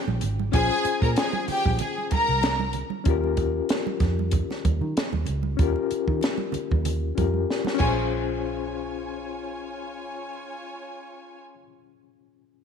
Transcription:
Already playing: reed electric piano C#4 F4 G#4 C5
0.07 fingered electric bass A#1, high conga
0.21 fingered electric bass G#1, closed hi-hat, low conga
0.39 high conga
0.52 fingered electric bass A#1, reed electric piano C#4 F4 G#4, string section G#4 G#5, kick, closed hi-hat, muted conga
0.58 reed electric piano C5
0.72 muted conga
0.85 muted fingered electric bass stroke, closed hi-hat
1.02 fingered electric bass A#2, string section A#4 A#5, kick
1.16 string section G#4 G#5, snare, closed hi-hat, muted conga
1.33 muted conga, high conga
1.48 string section G4 G5, muted fingered electric bass stroke, open hi-hat, low conga
1.66 fingered electric bass A#1, kick, high conga
1.79 string section G#4 G#5, closed hi-hat, low conga
1.98 muted conga
2.11 string section A#4 A#5, muted fingered electric bass stroke, kick, closed hi-hat, high conga
2.28 fingered electric bass C2, high conga
2.42 snare, closed hi-hat, muted conga
2.60 high conga
2.73 closed hi-hat, low conga
2.90 high conga
3.04 fingered electric bass D#2, reed electric piano C#4 F4, kick, closed hi-hat, muted conga
3.08 reed electric piano G4 A#4
3.24 muted conga
3.37 kick, closed hi-hat
3.69 snare, closed hi-hat
3.87 high conga
4.00 fingered electric bass F2, kick, snare, closed hi-hat, low conga
4.19 high conga
4.31 kick, closed hi-hat, muted conga, low conga
4.50 snare, muted conga
4.65 fingered electric bass D#2, kick, closed hi-hat, high conga
4.81 fingered electric bass D#3, high conga
4.97 snare, closed hi-hat
5.13 fingered electric bass D#2, muted conga, high conga
5.26 fingered electric bass C#2, closed hi-hat, low conga
5.43 high conga
5.57 fingered electric bass D#2, reed electric piano C#4 F4, kick, closed hi-hat, muted conga
5.61 reed electric piano G4 A#4
5.76 muted conga
5.91 muted fingered electric bass stroke, closed hi-hat
6.08 fingered electric bass D#3, kick
6.21 snare, closed hi-hat, muted conga
6.38 muted conga, high conga
6.52 muted fingered electric bass stroke, closed hi-hat, low conga
6.71 fingered electric bass D#2, kick, high conga
6.85 closed hi-hat, muted conga, low conga
7.15 fingered electric bass F2, reed electric piano C#4 F4 G4 A#4, kick, closed hi-hat, high conga
7.34 high conga
7.50 snare
7.65 snare, muted conga, high conga
7.74 reed electric piano C#4
7.79 fingered electric bass A#1, reed electric piano F4 G#4, string section F4 C#5 G#5, kick, crash, high conga
7.86 reed electric piano C5

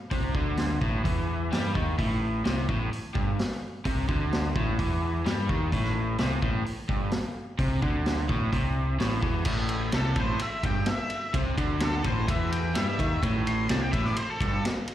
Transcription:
0.11 picked electric bass C2, overdriven electric guitar C3, kick, open hi-hat
0.35 picked electric bass D2, overdriven electric guitar D3, kick
0.57 snare, open hi-hat
0.81 picked electric bass A1, overdriven electric guitar A2, kick
1.05 picked electric bass E2, overdriven electric guitar E3, kick, open hi-hat
1.52 picked electric bass G2, overdriven electric guitar G3, snare, open hi-hat
1.73 picked electric bass D#2, overdriven electric guitar D#3, kick
1.98 picked electric bass A1, overdriven electric guitar A2, kick, open hi-hat
2.45 picked electric bass C2, overdriven electric guitar C3, snare, open hi-hat
2.69 picked electric bass A1, overdriven electric guitar A2, kick
2.91 muted picked electric bass stroke, muted overdriven electric guitar stroke, open hi-hat
3.14 picked electric bass G1, overdriven electric guitar G2, kick
3.39 snare, open hi-hat
3.51 snare
3.85 picked electric bass C2, overdriven electric guitar C3, kick, open hi-hat
4.09 picked electric bass D2, overdriven electric guitar D3, kick
4.33 snare, open hi-hat
4.55 picked electric bass A1, overdriven electric guitar A2, kick
4.79 picked electric bass E2, overdriven electric guitar E3, kick, open hi-hat
5.25 picked electric bass G2, overdriven electric guitar G3, snare, open hi-hat
5.49 picked electric bass D#2, overdriven electric guitar D#3, kick
5.72 picked electric bass A1, overdriven electric guitar A2, kick, open hi-hat
5.84 snare
6.18 picked electric bass C2, overdriven electric guitar C3, snare, open hi-hat
6.42 picked electric bass A1, overdriven electric guitar A2, kick
6.66 muted overdriven electric guitar stroke, muted picked electric bass stroke, open hi-hat
6.89 picked electric bass G1, overdriven electric guitar G2, kick
7.11 snare, open hi-hat
7.59 picked electric bass C2, overdriven electric guitar C3, kick, open hi-hat
7.82 picked electric bass D2, overdriven electric guitar D3, kick
8.06 snare, open hi-hat
8.29 picked electric bass A1, overdriven electric guitar A2, kick
8.53 picked electric bass C2, overdriven electric guitar C3, kick, open hi-hat
8.99 picked electric bass A1, overdriven electric guitar A2, snare, open hi-hat
9.22 picked electric bass E2, overdriven electric guitar E3, kick
9.45 picked electric bass A1, overdriven electric guitar A2, kick, crash
9.69 ride
9.92 picked electric bass C2, overdriven electric guitar C3, lead electric guitar A4, snare, ride
10.16 picked electric bass A1, overdriven electric guitar A2, kick, ride
10.20 lead electric guitar C5
10.39 lead electric guitar E5, muted picked electric bass stroke, muted overdriven electric guitar stroke, ride
10.63 picked electric bass G1, overdriven electric guitar G2, lead electric guitar G5, kick, ride
10.86 lead electric guitar E5, snare, ride
11.10 ride
11.34 picked electric bass C2, overdriven electric guitar C3, kick, ride
11.58 picked electric bass D2, overdriven electric guitar D3, kick, ride
11.80 lead electric guitar A4, snare, ride
12.04 picked electric bass A1, overdriven electric guitar A2, lead electric guitar C5, kick, ride
12.28 picked electric bass E2, overdriven electric guitar E3, lead electric guitar E5, kick, ride
12.52 lead electric guitar G5, ride
12.74 picked electric bass G2, overdriven electric guitar G3, lead electric guitar E5, snare, ride
12.99 picked electric bass D#2, overdriven electric guitar D#3, kick, ride
13.23 picked electric bass A1, overdriven electric guitar A2, kick, ride
13.47 lead electric guitar C6, ride
13.69 picked electric bass C2, overdriven electric guitar C3, lead electric guitar A5, snare, ride
13.81 lead electric guitar G5
13.92 picked electric bass A1, overdriven electric guitar A2, lead electric guitar E5, kick, ride
14.05 lead electric guitar D5, snare
14.17 lead electric guitar C5, muted overdriven electric guitar stroke, ride
14.30 lead electric guitar A4
14.40 picked electric bass G1, overdriven electric guitar G2, lead electric guitar A4, kick, ride
14.65 snare, ride
14.88 ride

